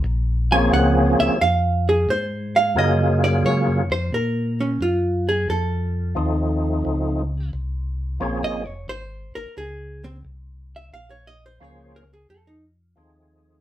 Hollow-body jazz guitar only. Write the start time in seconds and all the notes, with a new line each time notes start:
0.52 G#5
0.73 F#5
1.20 E5
1.41 F5
1.89 G#4
2.10 C5
2.56 F5
2.79 D#5
3.24 D5
3.46 C#5
3.92 C5
4.14 A#4
4.60 C#4
4.82 F4
5.29 G#4
5.50 A4
8.44 D#5
8.67 C#5
8.89 C5
9.35 A#4
9.58 G#4
10.04 C4
10.76 E5
10.94 F5
11.10 C#5
11.27 D#5
11.46 C5
11.63 C#5
11.96 A#4
12.13 G#4
12.30 A4
12.47 D#4